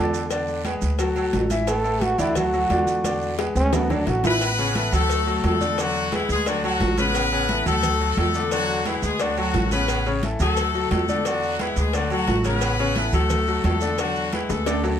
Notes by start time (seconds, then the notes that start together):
Already playing: E2 D3 D4 A4 D5
0.14 short guiro, maracas
0.31 D3 D4 D5, cowbell, high conga, low agogo, long guiro, maracas
0.48 high conga, maracas
0.65 G#3 G#4 B4, cowbell, high conga, low timbale, low agogo, short guiro, maracas
0.82 D2, high conga, short guiro, maracas
0.99 F#3 F#4 A4, cowbell, high conga, low agogo, long guiro, maracas
1.16 F#3 F#4 A4, high conga, low agogo, maracas
1.33 A1, cowbell, high conga, low timbale, short guiro, maracas
1.50 E3 E4 E5, cowbell, high conga, short guiro, maracas
1.67 A3 A4 B4, cowbell, high conga, low agogo, long guiro, maracas
1.84 A3 A4 B4, high conga, low agogo, maracas
2.01 F#4, cowbell, high conga, low timbale, short guiro, maracas
2.19 D2 D3 D4 E4 D5, high conga, low conga, low agogo, short guiro, maracas
2.35 F#3 F#4 A4, cowbell, high conga, low conga, low agogo, long guiro, maracas
2.53 F#3 F#4 A4, high conga, maracas
2.70 E2 D3 D4 D5, cowbell, high conga, low timbale, low agogo, short guiro, maracas
2.87 high conga, short guiro, maracas
3.04 D3 D4 D5, cowbell, high conga, low agogo, long guiro, maracas
3.22 maracas
3.39 G#3 G#4 B4, cowbell, high bongo, low timbale, low agogo, short guiro, maracas
3.55 D2 C#4, high conga, short guiro, maracas
3.73 F#3 B3 F#4 A4, cowbell, high bongo, low conga, high timbale, low agogo, long guiro, maracas
3.90 F#3 D4 F#4 A4, low bongo, low conga, low agogo, maracas
4.07 A1 F#4, cowbell, low bongo, short guiro, maracas
4.24 E3 B3 E4 B4 E5, cowbell, low bongo, low conga, low timbale, short guiro, maracas
4.41 cowbell, high conga, low agogo, long guiro, maracas
4.58 C#3 C#4 C#5, high conga, low agogo, maracas
4.75 E3 E4 A4, cowbell, high conga, low timbale, short guiro, maracas
4.92 D2 F#3 A3 F#4 A4, high conga, low conga, low agogo, short guiro, maracas
5.09 cowbell, high conga, low agogo, long guiro, maracas
5.27 F#3 F#4 A4, high conga, maracas
5.43 E2 A3 A4, cowbell, high conga, low timbale, low agogo, short guiro, maracas
5.61 D3 D4 D5, high conga, short guiro, maracas
5.78 D3 F#3 D4 F#4 D5, cowbell, high conga, low agogo, long guiro, maracas
5.95 high conga, maracas
6.12 E3 G#3 E4 G#4 B4, cowbell, high conga, low timbale, low agogo, short guiro, maracas
6.29 D2 G#3 G#4, high conga, short guiro, maracas
6.46 D3 F#3 D4 F#4 D5, cowbell, high conga, low agogo, long guiro, maracas
6.63 F#3 F#4 A4, high conga, low agogo, maracas
6.80 A1, cowbell, high conga, low timbale, short guiro, maracas
6.97 C#3 B3 C#4 B4 C#5, cowbell, high conga, short guiro, maracas
7.14 cowbell, low agogo, long guiro, maracas
7.32 C#3 C#4 C#5, high conga, low agogo, maracas
7.49 E3 E4 A4, cowbell, high conga, low timbale, short guiro, maracas
7.66 D2 F#3 A3 F#4 A4, high conga, low conga, low agogo, short guiro, maracas
7.83 cowbell, high conga, low conga, low agogo, long guiro, maracas
8.00 F#3 F#4 A4, high conga, maracas
8.17 E2 A3 A4, cowbell, high conga, low timbale, low agogo, short guiro, maracas
8.34 D3 D4 D5, short guiro, maracas
8.51 D3 F#3 D4 F#4 D5, cowbell, high conga, low agogo, long guiro, maracas
8.69 high conga, maracas
8.86 E3 G#3 E4 G#4 B4, cowbell, high conga, low timbale, low agogo, short guiro, maracas
9.02 D2 G#3 G#4, high conga, short guiro, maracas
9.19 D3 F#3 D4 F#4 D5, cowbell, high conga, low agogo, long guiro, maracas
9.37 F#3 F#4 A4, high conga, low agogo, maracas
9.54 A1, cowbell, high conga, low timbale, short guiro, maracas
9.71 C#3 B3 C#4 B4 C#5, cowbell, high conga, short guiro, maracas
9.88 cowbell, high conga, low agogo, long guiro, maracas
10.06 C#3 C#4 C#5, high conga, low agogo, maracas
10.23 E3 E4 A4, cowbell, high conga, low timbale, short guiro, maracas
10.40 D2 F#3 A3 F#4 A4, high conga, low conga, low agogo, short guiro, maracas
10.57 cowbell, high conga, low agogo, long guiro, maracas
10.74 F#3 F#4 A4, high conga, maracas
10.91 E2 A3 A4, cowbell, high conga, low timbale, low agogo, short guiro, maracas
11.09 D3 D4 D5, high conga, short guiro, maracas
11.25 D3 F#3 D4 F#4 D5, cowbell, high conga, low agogo, long guiro, maracas
11.43 high conga, maracas
11.59 E3 G#3 E4 G#4 B4, cowbell, high conga, low timbale, low agogo, short guiro, maracas
11.76 D2 G#3 G#4, high conga, short guiro, maracas
11.93 D3 F#3 D4 F#4 D5, cowbell, high conga, low agogo, long guiro, maracas
12.10 F#3 F#4 A4, high conga, low agogo, maracas
12.27 A1, cowbell, high conga, low timbale, short guiro, maracas
12.44 C#3 B3 C#4 B4 C#5, cowbell, high conga, short guiro, maracas
12.61 cowbell, low agogo, long guiro, maracas
12.79 C#3 C#4 C#5, high conga, low agogo, maracas
12.96 E3 E4 A4, cowbell, high conga, low timbale, short guiro, maracas
13.13 D2 F#3 A3 F#4 A4, high conga, low conga, low agogo, short guiro, maracas
13.30 cowbell, high conga, low conga, low agogo, long guiro, maracas
13.47 F#3 F#4 A4, high conga, maracas
13.64 E2 A3 A4, cowbell, high conga, low timbale, low agogo, short guiro, maracas
13.81 D3 D4 D5, short guiro, maracas
13.98 D3 F#3 D4 F#4 D5, cowbell, high conga, low agogo, long guiro, maracas
14.16 high conga, maracas
14.33 E3 G#3 E4 G#4 B4, cowbell, high conga, low timbale, low agogo, short guiro, maracas
14.49 D2 A3 A4, high bongo, high conga, short guiro, maracas
14.66 D3 D4 D5, cowbell, high bongo, high conga, high timbale, low agogo, long guiro, maracas
14.84 F#3 F#4 A4, high conga, high timbale, low agogo, maracas